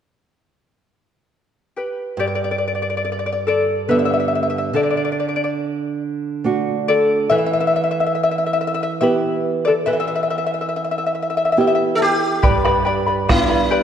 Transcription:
1.77 2.16 G4 soft
1.77 2.20 B4 soft
2.17 4.70 G2 medium
2.17 2.26 G4 medium
2.17 2.26 D5 medium
2.27 2.34 D5 soft
2.35 2.42 D5 medium
2.44 2.50 D5 soft
2.51 2.57 D5 medium
2.58 2.65 D5 soft
2.68 2.73 D5 soft
2.75 2.81 D5 soft
2.82 2.88 D5 soft
2.90 2.96 D5 soft
2.97 3.03 D5 soft
3.05 3.11 D5 soft
3.12 3.18 D5 soft
3.19 3.25 D5 soft
3.26 3.31 D5 soft
3.33 3.40 D5 soft
3.47 3.86 A4 soft
3.47 3.91 D5 medium
3.88 4.71 D3 soft
3.88 4.72 G3 soft
3.88 4.72 B3 soft
3.88 3.96 B4 medium
3.88 3.97 E5 medium
3.99 4.04 E5 medium
4.05 4.12 E5 medium
4.14 4.19 E5 soft
4.20 4.26 E5 medium
4.28 4.34 E5 soft
4.35 4.42 E5 soft
4.43 4.49 E5 soft
4.50 4.57 E5 medium
4.58 4.65 E5 medium
4.73 7.26 D3 medium
4.73 4.82 A4 medium
4.73 4.82 D5 medium
4.83 4.89 D5 soft
4.91 4.96 D5 soft
4.97 5.03 D5 soft
5.05 5.11 D5 soft
5.12 5.18 D5 soft
5.20 5.27 D5 soft
5.29 5.35 D5 soft
5.36 5.43 D5 medium
5.44 5.50 D5 soft
6.44 7.28 A3 soft
6.44 7.28 D4 soft
6.44 7.29 F#4 soft
6.88 7.29 A4 medium
6.88 7.32 D5 medium
7.30 9.83 E3 medium
7.30 7.38 B4 medium
7.30 7.37 E5 medium
7.38 7.45 E5 medium
7.46 7.52 E5 medium
7.53 7.59 E5 medium
7.61 7.66 E5 medium
7.67 7.75 E5 medium
7.76 7.82 E5 medium
7.84 7.90 E5 medium
7.91 7.99 E5 medium
8.00 8.05 E5 medium
8.06 8.14 E5 medium
8.15 8.22 E5 soft
8.23 8.30 E5 medium
8.31 8.37 E5 soft
8.38 8.45 E5 medium
8.46 8.52 E5 medium
8.53 8.60 E5 medium
8.61 8.66 E5 medium
8.67 8.73 E5 medium
8.74 8.82 E5 medium
8.83 8.91 E5 medium
9.01 9.85 B3 soft
9.01 9.85 E4 soft
9.01 9.85 G4 soft
9.01 9.63 B4 medium
9.01 9.67 E5 medium
9.65 9.73 A4 medium
9.65 9.71 D5 medium
9.86 12.39 E3 medium
9.86 9.95 B4 medium
9.86 9.92 E5 medium
9.93 9.99 E5 medium
10.00 10.06 E5 medium
10.08 10.14 E5 medium
10.15 10.22 E5 medium
10.23 10.29 E5 medium
10.30 10.37 E5 medium
10.38 10.45 E5 soft
10.47 10.53 E5 medium
10.54 10.60 E5 soft
10.61 10.68 E5 medium
10.69 10.75 E5 soft
10.76 10.83 E5 medium
10.84 10.90 E5 soft
10.91 10.97 E5 medium
10.98 11.05 E5 soft
11.06 11.14 E5 medium
11.15 11.21 E5 soft
11.22 11.29 E5 soft
11.30 11.36 E5 soft
11.37 11.44 E5 medium
11.45 11.51 E5 medium
11.52 11.59 E5 medium
11.57 12.40 B3 soft
11.57 12.41 E4 soft
11.57 12.41 G4 soft
11.57 11.66 E5 medium
11.67 11.74 E5 medium
11.75 11.83 E5 medium
11.95 12.02 A4 medium
12.02 13.33 G4 medium
12.43 13.26 G2 medium
12.43 12.64 G4 medium
12.43 12.64 B4 medium
12.43 12.64 D5 medium
12.43 12.64 G5 medium
12.43 12.63 B5 medium
12.43 bombo low medium
12.65 12.87 G4 medium
12.65 12.84 B4 medium
12.65 12.85 D5 medium
12.65 12.84 G5 medium
12.65 12.85 B5 medium
12.65 bombo rim medium
12.85 13.07 B4 medium
12.85 13.06 D5 medium
12.85 13.07 G5 medium
12.85 13.05 B5 medium
13.06 13.27 B4 soft
13.06 13.28 D5 soft
13.06 13.28 B5 soft
13.29 13.83 G3 soft
13.29 13.83 B3 soft
13.29 13.83 D4 soft
13.29 13.83 E4 medium
13.29 13.50 B4 medium
13.29 13.49 D5 medium
13.29 13.50 G5 medium
13.29 13.48 B5 medium
13.29 bombo rim medium
13.29 bombo low medium
13.49 13.70 B4 soft
13.49 13.70 D5 soft
13.49 13.70 B5 soft
13.70 13.83 G4 medium
13.70 13.83 B4 medium
13.70 13.83 D5 medium
13.70 13.83 G5 medium
13.70 13.83 B5 medium

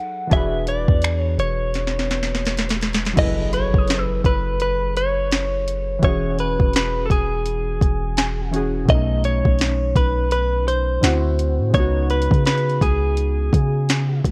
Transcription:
0.00 0.25 F#3 medium
0.00 0.27 D#4 medium
0.00 0.29 G#4 medium
0.00 0.30 A4 medium
0.00 0.33 F#5 loud
0.00 0.56 F#5 medium
0.27 3.11 E3 medium
0.27 3.12 D4 medium
0.27 3.06 G#5 medium
0.31 0.86 E1 loud
0.31 3.13 F#4 medium
0.31 3.15 G#4 medium
0.31 0.65 E5 loud
0.31 kick loud
0.31 closed hi-hat medium
0.37 3.16 B4 medium
0.67 1.19 D5 medium
0.67 closed hi-hat medium
0.88 1.37 E2 loud
0.88 kick loud
1.02 finger snap loud
1.02 closed hi-hat medium
1.19 1.39 C#5 medium
1.38 3.13 E1 loud
1.38 2.78 C#5 medium
1.38 closed hi-hat medium
1.74 snare medium
1.74 closed hi-hat medium
1.87 snare medium
1.99 snare medium
2.11 snare medium
2.11 closed hi-hat medium
2.23 snare medium
2.35 snare medium
2.46 snare medium
2.46 closed hi-hat medium
2.58 snare medium
2.58 closed hi-hat medium
2.69 snare loud
2.69 closed hi-hat medium
2.81 snare medium
2.81 closed hi-hat soft
2.93 snare loud
2.93 closed hi-hat soft
3.05 snare medium
3.05 closed hi-hat soft
3.13 3.71 F#1 loud
3.13 5.97 F#3 medium
3.13 5.98 E4 medium
3.13 kick loud
3.13 closed hi-hat medium
3.13 crash loud
3.13 impact medium
3.18 5.99 G#4 medium
3.18 6.01 A4 medium
3.18 3.54 D#5 loud
3.23 6.02 B4 medium
3.53 4.04 C#5 loud
3.53 6.28 B5 medium
3.53 closed hi-hat medium
3.74 4.23 F#1 loud
3.74 kick loud
3.78 6.48 D#6 medium
3.88 snare loud
3.88 closed hi-hat medium
3.99 6.68 E6 medium
4.04 4.21 B4 loud
4.24 5.99 F#1 loud
4.24 4.60 B4 medium
4.24 kick medium
4.24 closed hi-hat medium
4.60 4.94 B4 loud
4.60 closed hi-hat medium
4.97 6.03 C#5 loud
4.97 closed hi-hat medium
5.32 snare loud
5.32 closed hi-hat medium
5.68 closed hi-hat medium
5.99 6.57 E1 loud
5.99 8.47 E3 medium
5.99 8.49 C#4 medium
5.99 kick loud
5.99 closed hi-hat medium
6.04 8.50 F#4 medium
6.04 6.40 C#5 loud
6.04 8.78 E5 medium
6.09 8.52 G#4 medium
6.39 6.75 B4 medium
6.39 closed hi-hat medium
6.60 7.08 E1 loud
6.60 kick loud
6.73 7.06 B4 medium
6.73 snare loud
6.73 closed hi-hat medium
7.06 7.11 A4 medium
7.10 7.79 E1 loud
7.10 8.50 G#4 medium
7.10 kick medium
7.10 closed hi-hat medium
7.46 closed hi-hat medium
7.81 8.85 E1 loud
7.81 kick medium
7.81 closed hi-hat medium
8.17 9.21 G#5 medium
8.17 snare loud
8.17 closed hi-hat medium
8.51 8.88 E3 medium
8.51 8.89 C#4 medium
8.51 8.89 F#4 medium
8.51 closed hi-hat medium
8.56 8.90 G#4 medium
8.85 9.43 B1 loud
8.85 10.97 B2 medium
8.85 10.99 A3 medium
8.85 kick loud
8.85 closed hi-hat medium
8.90 11.00 C#4 medium
8.90 9.25 D#5 loud
8.94 11.02 D#4 medium
9.24 9.96 C#5 loud
9.24 closed hi-hat medium
9.45 9.94 B1 medium
9.45 kick loud
9.59 snare loud
9.59 closed hi-hat medium
9.96 10.99 B1 loud
9.96 10.31 B4 medium
9.96 kick medium
9.96 closed hi-hat medium
10.31 10.65 B4 loud
10.31 closed hi-hat medium
10.68 11.74 C5 loud
10.68 closed hi-hat medium
11.01 11.61 D2 loud
11.01 11.73 D3 medium
11.01 11.74 C4 medium
11.01 11.75 E4 medium
11.01 12.06 F#5 medium
11.01 snare loud
11.01 closed hi-hat medium
11.06 11.76 F#4 medium
11.39 closed hi-hat medium
11.59 11.73 A2 loud
11.70 12.28 C#2 loud
11.70 14.31 C#3 medium
11.70 14.31 B3 medium
11.70 kick loud
11.70 closed hi-hat medium
11.75 14.31 D#4 medium
11.75 12.10 C#5 loud
11.80 14.31 F#4 medium
12.10 12.44 B4 medium
12.10 closed hi-hat medium
12.22 closed hi-hat medium
12.31 12.80 C#3 loud
12.31 kick loud
12.31 closed hi-hat medium
12.46 12.83 B4 medium
12.46 snare loud
12.46 closed hi-hat soft
12.58 closed hi-hat soft
12.70 closed hi-hat soft
12.81 13.50 C#2 loud
12.81 14.21 G#4 medium
12.81 kick medium
12.81 closed hi-hat medium
13.17 closed hi-hat medium
13.53 14.21 C#3 loud
13.53 kick medium
13.53 closed hi-hat medium
13.89 snare loud
13.89 closed hi-hat medium
14.24 14.31 C#2 loud
14.24 kick loud
14.24 closed hi-hat medium

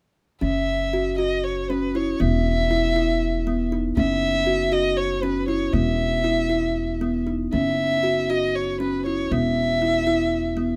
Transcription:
0.41 2.17 F#1 medium
0.41 0.72 C#4 medium
0.41 1.15 E5 medium
0.93 1.09 F#4 medium
1.18 1.49 F#4 medium
1.18 1.45 D#5 medium
1.44 1.72 C#5 medium
1.70 1.85 C#4 medium
1.70 1.97 B4 medium
1.95 2.10 E4 medium
1.95 2.22 C#5 medium
2.20 3.94 E1 medium
2.20 2.51 B3 medium
2.20 3.72 E5 medium
2.71 2.86 E4 medium
2.96 3.27 E4 medium
3.47 3.62 B3 medium
3.72 3.87 D#4 medium
3.97 5.70 F#1 medium
3.97 4.27 C#4 medium
3.97 4.74 E5 medium
4.47 4.62 F#4 medium
4.72 5.02 F#4 medium
4.72 4.99 D#5 medium
4.97 5.24 C#5 medium
5.23 5.38 C#4 medium
5.23 5.48 B4 medium
5.48 5.63 E4 medium
5.48 5.74 C#5 medium
5.73 7.49 E1 medium
5.73 6.04 B3 medium
5.73 7.27 E5 medium
6.24 6.40 E4 medium
6.50 6.81 E4 medium
7.01 7.17 B3 medium
7.27 7.42 D#4 medium
7.53 9.28 F#1 medium
7.53 7.84 C#4 medium
7.53 8.31 E5 medium
8.03 8.19 F#4 medium
8.30 8.60 F#4 medium
8.30 8.57 D#5 medium
8.55 8.80 C#5 medium
8.80 8.96 C#4 medium
8.80 9.04 B4 medium
9.06 9.21 E4 medium
9.06 9.33 C#5 medium
9.31 10.76 E1 medium
9.31 9.62 B3 medium
9.31 10.76 E5 medium
9.82 9.97 E4 medium
10.07 10.37 E4 medium
10.57 10.72 B3 medium

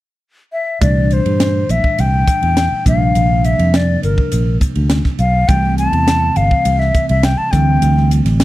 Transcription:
0.53 0.79 E5 medium
0.81 1.19 C2 medium
0.81 2.82 A#2 soft
0.81 2.82 E3 soft
0.81 2.82 G3 soft
0.81 2.82 A3 soft
0.81 2.82 D4 medium
0.81 1.14 D5 medium
0.81 kick medium
0.81 hi-hat pedal medium
0.81 ride medium
1.11 1.72 C5 medium
1.11 hi-hat pedal medium
1.11 ride soft
1.25 1.62 G2 medium
1.25 ride medium
1.40 snare medium
1.40 hi-hat pedal medium
1.40 ride medium
1.69 1.81 A#1 medium
1.69 2.02 E5 medium
1.69 hi-hat pedal medium
1.69 ride medium
1.84 kick medium
1.98 2.23 C2 medium
1.98 2.87 G5 medium
1.98 hi-hat pedal medium
1.98 ride medium
2.27 kick medium
2.27 hi-hat pedal medium
2.27 ride soft
2.43 2.67 E2 medium
2.43 ride medium
2.57 snare medium
2.57 hi-hat pedal medium
2.57 ride medium
2.72 muted fingered electric bass stroke soft
2.85 3.11 A#1 medium
2.85 5.15 C3 medium
2.85 5.15 F3 soft
2.85 5.16 G3 soft
2.85 5.16 A#3 soft
2.85 5.16 D4 medium
2.85 3.47 F5 medium
2.85 kick medium
2.85 hi-hat pedal medium
2.85 ride soft
3.15 3.52 A#1 medium
3.15 hi-hat pedal medium
3.15 ride medium
3.44 3.77 E5 medium
3.44 hi-hat pedal medium
3.44 ride soft
3.59 3.96 F2 medium
3.59 ride soft
3.74 4.03 D5 medium
3.74 snare medium
3.74 hi-hat pedal medium
3.74 ride medium
4.03 4.16 G1 medium
4.03 4.58 A#4 medium
4.03 hi-hat pedal medium
4.03 ride soft
4.18 muted fingered electric bass stroke soft
4.18 kick medium
4.32 4.57 A#1 medium
4.32 hi-hat pedal medium
4.32 ride medium
4.61 kick medium
4.61 hi-hat pedal medium
4.61 ride soft
4.75 5.01 D2 medium
4.75 ride soft
4.90 snare medium
4.90 hi-hat pedal medium
4.90 ride medium
5.04 kick medium
5.04 snare soft
5.19 5.44 B1 medium
5.19 5.50 F5 medium
5.19 hi-hat pedal medium
5.19 ride soft
5.48 5.86 C2 medium
5.48 7.49 C3 soft
5.48 7.49 E3 soft
5.48 7.49 G3 soft
5.48 7.49 A3 soft
5.48 7.50 C4 medium
5.48 5.78 G5 medium
5.48 kick medium
5.48 hi-hat pedal medium
5.48 ride medium
5.78 6.38 A5 medium
5.78 hi-hat pedal medium
5.78 ride soft
5.92 6.29 E2 medium
5.92 ride soft
6.08 snare medium
6.08 hi-hat pedal medium
6.08 ride medium
6.36 6.49 G1 medium
6.36 6.81 F5 medium
6.36 hi-hat pedal medium
6.36 ride soft
6.51 muted fingered electric bass stroke soft
6.51 kick medium
6.65 6.90 C2 medium
6.65 hi-hat pedal medium
6.65 ride medium
6.79 7.09 E5 medium
6.79 snare soft
6.95 kick medium
6.95 hi-hat pedal medium
6.95 ride soft
7.09 7.34 C2 medium
7.09 7.26 E5 medium
7.09 ride medium
7.23 7.39 G5 medium
7.23 snare medium
7.23 hi-hat pedal medium
7.23 ride medium
7.38 7.53 A5 medium
7.51 7.77 D2 medium
7.51 8.44 D3 medium
7.51 8.44 E3 soft
7.51 8.44 G3 soft
7.51 8.44 A3 soft
7.51 8.44 C4 medium
7.51 8.10 G5 medium
7.51 kick medium
7.51 snare soft
7.51 hi-hat pedal medium
7.51 ride soft
7.82 8.19 D2 medium
7.82 hi-hat pedal medium
7.82 ride medium
7.97 snare soft
8.11 hi-hat pedal medium
8.11 ride medium
8.25 8.44 A1 medium
8.25 snare soft
8.25 ride medium
8.40 snare medium
8.40 hi-hat pedal medium
8.40 ride medium

